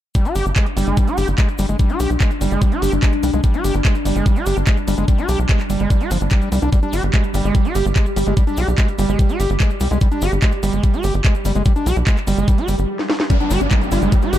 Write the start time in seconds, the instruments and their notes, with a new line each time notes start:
0.15 synth texture G3 D4, acid bass G3, kick, closed hi-hat, cabasa
0.25 acid bass G4, closed hi-hat, cabasa
0.35 analog synth bass G1, acid bass G4, open hi-hat, cabasa
0.46 analog synth bass G1, closed hi-hat, cabasa
0.56 acid bass G#3, kick, clap, closed hi-hat, cabasa
0.66 closed hi-hat, cabasa
0.77 analog synth bass G1, acid bass G3, open hi-hat, cabasa
0.87 analog synth bass G1, acid bass G#3, closed hi-hat, cabasa
0.97 acid bass G3, kick, closed hi-hat, cabasa
1.07 acid bass G4, closed hi-hat, cabasa
1.17 analog synth bass G1, acid bass G4, open hi-hat, cabasa
1.28 analog synth bass G1, closed hi-hat, cabasa
1.38 acid bass G#3, kick, clap, closed hi-hat, cabasa
1.49 closed hi-hat, cabasa
1.58 analog synth bass G1, acid bass G3, open hi-hat, cabasa
1.69 analog synth bass G1, acid bass G#3, cabasa
1.79 acid bass G3, kick, closed hi-hat, cabasa
1.89 acid bass G4, closed hi-hat, cabasa
2.00 analog synth bass B1, acid bass G4, open hi-hat, cabasa
2.10 analog synth bass B1, closed hi-hat, cabasa
2.20 acid bass G#3, kick, clap, closed hi-hat, cabasa
2.31 closed hi-hat, cabasa
2.41 analog synth bass G1, acid bass G3, open hi-hat, cabasa
2.51 analog synth bass G1, acid bass G#3, closed hi-hat, cabasa
2.62 acid bass G3, kick, closed hi-hat, cabasa
2.72 acid bass G4, closed hi-hat, cabasa
2.82 analog synth bass G1, acid bass G4, open hi-hat, cabasa
2.92 analog synth bass G1, closed hi-hat, cabasa
3.03 acid bass G#3, kick, clap, closed hi-hat, cabasa
3.12 closed hi-hat, cabasa
3.23 analog synth bass C2, acid bass G3, open hi-hat, cabasa
3.33 analog synth bass C2, acid bass G#3, cabasa
3.43 acid bass G3, kick, closed hi-hat, cabasa
3.54 acid bass G4, closed hi-hat, cabasa
3.64 analog synth bass G1, acid bass G4, open hi-hat, cabasa
3.74 analog synth bass G1, closed hi-hat, cabasa
3.85 acid bass G#3, kick, clap, closed hi-hat, cabasa
3.95 closed hi-hat, cabasa
4.05 analog synth bass G1, acid bass G3, open hi-hat, cabasa
4.16 analog synth bass G1, acid bass G#3, closed hi-hat, cabasa
4.26 acid bass G3, kick, closed hi-hat, cabasa
4.36 acid bass G4, closed hi-hat, cabasa
4.46 analog synth bass G1, acid bass G4, open hi-hat, cabasa
4.57 analog synth bass G1, closed hi-hat, cabasa
4.66 acid bass G#3, kick, clap, closed hi-hat, cabasa
4.77 closed hi-hat, cabasa
4.88 analog synth bass G1, acid bass G3, open hi-hat, cabasa
4.98 analog synth bass G1, acid bass G#3, closed hi-hat, cabasa
5.08 acid bass G3, kick, closed hi-hat, cabasa
5.18 acid bass G4, closed hi-hat, cabasa
5.29 analog synth bass B1, acid bass G4, open hi-hat, cabasa
5.39 analog synth bass B1, closed hi-hat, cabasa
5.49 acid bass G#3, kick, clap, closed hi-hat, cabasa
5.60 clap, closed hi-hat, cabasa
5.70 analog synth bass G1, acid bass G3, open hi-hat, cabasa
5.80 analog synth bass G1, acid bass G#3, closed hi-hat, cabasa
5.90 acid bass G3, kick, closed hi-hat, cabasa
6.01 acid bass G4, closed hi-hat, cabasa
6.11 analog synth bass G1, acid bass F3, open hi-hat, cabasa
6.21 analog synth bass G1, cabasa
6.30 acid bass G3, kick, clap, closed hi-hat, cabasa
6.42 acid bass G3, closed hi-hat, cabasa
6.52 analog synth bass C2, acid bass G3, open hi-hat, cabasa
6.62 analog synth bass C2, acid bass D4, closed hi-hat, cabasa
6.72 acid bass G3, synth texture G4, kick, closed hi-hat, cabasa
6.83 acid bass D4, closed hi-hat, cabasa
6.93 analog synth bass G1, acid bass G4, open hi-hat, cabasa
7.03 analog synth bass G1, closed hi-hat, cabasa
7.13 acid bass G#3, kick, clap, closed hi-hat, cabasa
7.24 closed hi-hat, cabasa
7.34 analog synth bass G1, acid bass G3, open hi-hat, cabasa
7.44 analog synth bass G1, acid bass G#3, closed hi-hat, cabasa
7.55 acid bass G3, kick, closed hi-hat, cabasa
7.65 acid bass G4, closed hi-hat, cabasa
7.75 analog synth bass G1, acid bass G4, open hi-hat, cabasa
7.86 analog synth bass G1, closed hi-hat, cabasa
7.96 acid bass G#3, kick, clap, closed hi-hat, cabasa
8.06 closed hi-hat, cabasa
8.16 analog synth bass G1, acid bass G3, open hi-hat, cabasa
8.26 analog synth bass G1, acid bass G#3, closed hi-hat, cabasa
8.37 acid bass G3, kick, closed hi-hat, cabasa
8.47 acid bass D4, closed hi-hat, cabasa
8.57 analog synth bass B1, acid bass G4, open hi-hat, cabasa
8.68 analog synth bass B1, closed hi-hat, cabasa
8.78 acid bass G#3, kick, clap, closed hi-hat, cabasa
8.88 closed hi-hat, cabasa
8.99 analog synth bass G1, acid bass G3, open hi-hat, cabasa
9.09 analog synth bass G1, acid bass G#3, closed hi-hat, cabasa
9.19 acid bass G3, kick, closed hi-hat, cabasa
9.29 acid bass G4, closed hi-hat, cabasa
9.40 analog synth bass G1, acid bass G4, open hi-hat, cabasa
9.50 analog synth bass G1, closed hi-hat, cabasa
9.60 acid bass G#3, kick, clap, closed hi-hat, cabasa
9.70 closed hi-hat, cabasa
9.80 analog synth bass C2, acid bass G3, open hi-hat, cabasa
9.91 analog synth bass C2, acid bass G#3, closed hi-hat, cabasa
10.01 acid bass G3, kick, closed hi-hat, cabasa
10.12 acid bass D4, closed hi-hat, cabasa
10.22 analog synth bass G1, acid bass G4, open hi-hat, cabasa
10.32 analog synth bass G1, cabasa
10.42 acid bass G#3, kick, clap, closed hi-hat, cabasa
10.52 closed hi-hat, cabasa
10.63 analog synth bass G1, acid bass G3, open hi-hat, cabasa
10.73 analog synth bass G1, acid bass G#3, closed hi-hat, cabasa
10.83 acid bass G3, kick, closed hi-hat, cabasa
10.94 acid bass G4, closed hi-hat, cabasa
11.03 analog synth bass G1, acid bass G4, open hi-hat, cabasa
11.14 analog synth bass G1, closed hi-hat, cabasa
11.25 acid bass G#3, kick, clap, closed hi-hat, cabasa
11.35 closed hi-hat, cabasa
11.45 analog synth bass G1, acid bass G3, open hi-hat, cabasa
11.55 analog synth bass G1, acid bass G#3, closed hi-hat, cabasa
11.65 acid bass G3, kick, closed hi-hat, cabasa
11.76 acid bass D4, closed hi-hat, cabasa
11.86 analog synth bass B1, acid bass G4, open hi-hat, cabasa
11.96 analog synth bass B1, closed hi-hat, cabasa
12.07 acid bass G#3, kick, clap, closed hi-hat, cabasa
12.17 clap, closed hi-hat, cabasa
12.27 analog synth bass G1, acid bass G3, open hi-hat, cabasa
12.38 analog synth bass G1, acid bass G#3, closed hi-hat, cabasa
12.48 acid bass G3, kick, closed hi-hat, swell, cabasa
12.58 acid bass G4, closed hi-hat, cabasa
12.68 analog synth bass G1, acid bass G3, open hi-hat, cabasa
12.79 analog synth bass G1, closed hi-hat, cabasa
12.99 snare
13.10 snare
13.20 snare
13.30 acid bass G3, synth texture G3 D4, digital synth lead D4, kick, closed hi-hat, downlifter, cabasa
13.40 digital synth lead G3, acid bass D4, closed hi-hat, cabasa
13.51 analog synth bass G1, digital synth lead G3, acid bass G4, open hi-hat, cabasa
13.61 analog synth bass G1, digital synth lead D4, closed hi-hat, cabasa
13.71 digital synth lead G3, acid bass G#3, kick, clap, closed hi-hat, cabasa
13.81 digital synth lead G3, closed hi-hat, cabasa
13.91 analog synth bass G1, acid bass G3, digital synth lead F4, open hi-hat, cabasa
14.02 analog synth bass G1, digital synth lead G3, acid bass G#3, closed hi-hat, cabasa
14.12 acid bass G3, digital synth lead G3, kick, closed hi-hat, cabasa
14.22 digital synth lead G3, acid bass G4, closed hi-hat, cabasa
14.33 analog synth bass G1, acid bass G4, digital synth lead G4, open hi-hat, cabasa